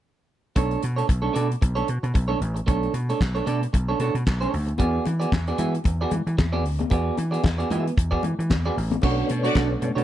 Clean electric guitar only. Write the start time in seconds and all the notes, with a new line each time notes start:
0.56 A3 D4 A4 C#5
0.82 muted clean electric guitar stroke
0.96 A3 D4 A4 C#5
1.07 muted clean electric guitar stroke
1.22 A3 D4 A4 C#5
1.33 A3 D4 A4 D5
1.49 muted clean electric guitar stroke
1.61 muted clean electric guitar stroke
1.75 A3 D4 A4 C#5
1.89 muted clean electric guitar stroke
2.03 muted clean electric guitar stroke
2.14 muted clean electric guitar stroke
2.28 A3 D4 A4 C#5
2.39 muted clean electric guitar stroke
2.55 muted clean electric guitar stroke
2.67 A3 D4 A4 C#5
2.94 muted clean electric guitar stroke
3.09 A3 D4 A4 C#5
3.21 muted clean electric guitar stroke
3.35 A3 D4 A4 C#5
3.46 A3 D4 A4 D5
3.62 muted clean electric guitar stroke
3.73 muted clean electric guitar stroke
3.88 A3 D4 A4 C#5
4.00 A3 D4 A4 C#5
4.15 muted clean electric guitar stroke
4.27 muted clean electric guitar stroke
4.41 A3 D4 A4 C#5
4.54 muted clean electric guitar stroke
4.67 muted clean electric guitar stroke
4.79 B3 F#4 G#4 D5
5.06 muted clean electric guitar stroke
5.20 B3 F#4 G#4 D5
5.48 B3 F#4 G#4 D5
5.58 B3 F#4 G#4 E5
5.75 muted clean electric guitar stroke
5.87 muted clean electric guitar stroke
6.01 B3 F#4 G#4 D5
6.13 muted clean electric guitar stroke
6.27 muted clean electric guitar stroke
6.38 muted clean electric guitar stroke
6.53 B3 F#4 G#4 D5
6.65 muted clean electric guitar stroke
6.79 muted clean electric guitar stroke
6.91 B3 F#4 G#4 D5
7.17 muted clean electric guitar stroke
7.31 B3 F#4 G#4 D5
7.44 muted clean electric guitar stroke
7.58 B3 F#4 G#4 D5
7.70 B3 F#4 G#4 E5
7.86 muted clean electric guitar stroke
7.97 muted clean electric guitar stroke
8.11 B3 F#4 G#4 D5
8.40 muted clean electric guitar stroke
8.52 muted clean electric guitar stroke
8.66 B3 F#4 G#4 D5
8.76 muted clean electric guitar stroke
8.92 muted clean electric guitar stroke
9.03 A3 D4 F#4 C#5
9.30 muted clean electric guitar stroke
9.43 A3 D4 F#4 C#5
9.55 A3 D4 F#4 D5
9.70 muted clean electric guitar stroke
9.82 muted clean electric guitar stroke
9.95 A3 D4 F#4 C#5